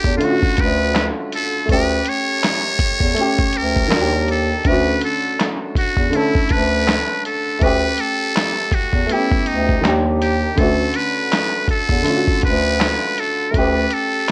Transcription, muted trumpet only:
Already playing: G4
0.17 F4
0.24 F#4
0.61 B4
1.35 A4
1.72 B4
2.08 C#5
3.57 A#4
4.31 A4
4.67 B4
5.04 A4
5.79 F#4
6.16 E4
6.52 B4
7.26 A4
7.63 B4
8.00 A4
8.74 F#4
9.12 E4
9.47 D#4
10.22 G4
10.59 A4
10.96 B4
11.71 A4
12.45 B4
13.20 A4
13.51 A#4
13.56 B4
13.93 A4

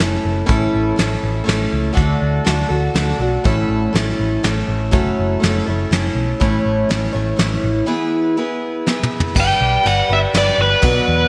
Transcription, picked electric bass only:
0.00 F#1
0.25 F#1
0.49 A1
0.74 A1
0.98 A1
1.23 A1
1.48 A1
1.73 C#2
1.98 D2
2.22 D2
2.46 D2
2.70 D2
2.94 D2
3.19 B1
3.45 A1
3.69 A1
3.94 A1
4.19 A1
4.44 A1
4.68 A1
4.93 F#1
5.19 F#1
5.43 F#1
5.68 F#1
5.91 F#1
6.15 B1
6.41 A1
6.66 A1
6.90 A1
7.15 A1
7.39 A1
7.64 A1
9.36 G1
9.61 B1
9.85 G1
10.09 G1
10.34 G1
10.58 G1
10.83 B1
11.08 E2

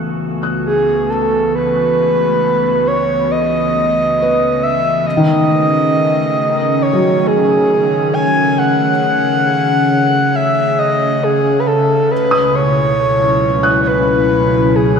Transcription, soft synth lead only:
0.66 G#4
1.10 A4
1.55 B4
2.87 C#5
3.31 D#5
4.63 E5
5.06 D#5
6.82 C#5
7.27 G#4
8.13 G#5
8.58 F#5
10.35 E5
10.79 D#5
11.23 G#4
11.60 B4
11.67 A4
12.11 B4
12.55 C#5
13.81 C#5
13.87 B4
14.76 G#4

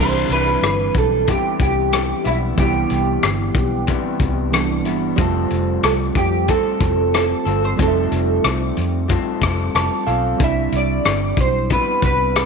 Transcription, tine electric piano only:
Already playing: E3 G3
0.00 C4 D4
2.55 E3 G3 B3
2.60 E4
4.52 E3 G3 B3 D4
5.16 G3 A3 C4
5.21 F4
7.76 G3 A3 C4
7.81 D#4
7.88 E5
9.75 A5
10.07 F5
10.37 G3 C4
10.41 D4 E4

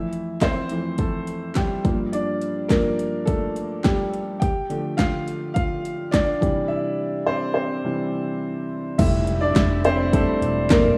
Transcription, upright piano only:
Already playing: F2 E3 A3 E4 E5
0.42 C4 C5
0.71 F2 E3 A3
1.00 A3 A4
1.56 G3 G4
1.85 G2 F3 A#3
2.13 D4 D5
2.68 G2 F3 A#3 A#4
3.25 A3 A4
3.84 G3 G4
4.40 G4 G5
4.70 D3 F3 A3
4.97 F4 F5
5.54 F4 F5
6.11 D4 D5
6.41 C3 E3 G3
6.68 E4 E5
7.26 C4 C5
7.54 C4 C5
7.84 C3 E3 G3
8.98 G3 A3 E4 E5
9.41 D4 D5
9.85 C4 C5
10.13 G3 A3 E4 A4
10.70 A#3 A#4

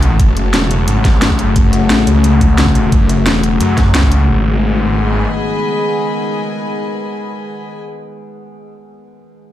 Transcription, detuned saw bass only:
Already playing: C#2
0.20 F#1
0.54 E1
0.88 G#1
1.35 G1
1.56 F#1
1.90 A1
2.07 C#2
2.41 C#2
2.92 F#1
3.26 E1
3.60 F#2
3.95 C#2
4.29 G#1

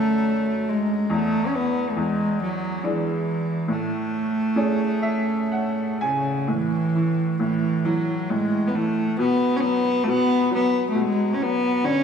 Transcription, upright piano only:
Already playing: F#2 D3 F#3 C#4
1.09 E2
1.96 E2
2.84 E3 G#3 D4
3.68 A2
4.56 A3 C#4 G#4
5.02 E5
5.52 F#5
6.01 G#5
6.48 A2
6.95 E3
7.40 A2
7.85 E3
8.30 A2
8.75 E3
9.19 B2
9.63 F#3
10.07 B2
10.51 F#3
10.95 B2
11.41 F#3
11.84 D3

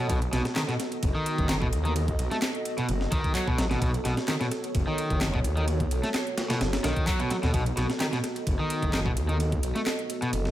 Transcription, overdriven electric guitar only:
0.09 B2
0.33 B2
0.56 D#3
0.68 B2
1.15 D#3
1.49 D#3
1.62 B2
1.85 D#3
2.32 A3
2.78 B2
3.12 D#3
3.35 F#3
3.47 B2
3.58 F#3
3.71 B2
3.81 B2
4.05 B2
4.28 D#3
4.41 B2
4.87 D#3
5.21 D#3
5.34 B2
5.57 D#3
6.03 A3
6.50 B2
6.84 D#3
7.07 F#3
7.20 B2
7.31 F#3
7.43 B2
7.54 B2
7.77 B2
8.00 D#3
8.13 B2
8.59 D#3
8.93 D#3
9.06 B2
9.29 D#3
9.75 A3
10.22 B2

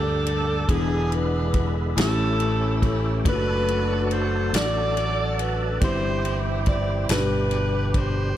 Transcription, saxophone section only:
Already playing: D4 A4
0.68 B3 D4 G#4
1.13 B4
1.97 C#4 E4 A4
2.84 A4
3.26 D4 F#4 B4
4.12 C5
4.54 F#4 A4 D5
5.40 B4
5.83 E4 G4 C5
6.69 D5
7.10 D4 G4 B4
7.96 C5

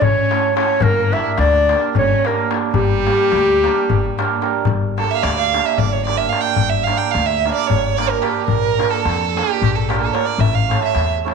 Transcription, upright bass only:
0.04 A1
0.82 G1
1.38 D2
1.96 G1
2.74 G1
3.32 D2
3.90 G1
4.67 G1
5.23 D2
5.79 G1
6.57 G1
7.15 D2
7.70 G1
8.48 A#1
9.05 F2
9.62 A#1
10.38 A1
10.95 E2

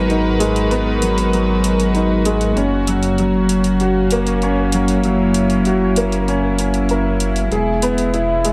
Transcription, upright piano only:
Already playing: F#3 G#3 B3 D#4
0.10 D#4
0.40 G#3
0.71 B3
1.02 F#3
1.33 F#3
1.95 D#4
2.26 G#3
2.57 C#4
2.88 F#3
3.19 F#3
3.81 F#4
4.12 A#3
4.43 C#4
4.74 F#3
5.05 F#3
5.66 F#4
5.97 A#3
6.29 C#4
6.59 C#4
6.91 A#4
7.52 G#4
7.83 B3
8.14 E4
8.45 G#3

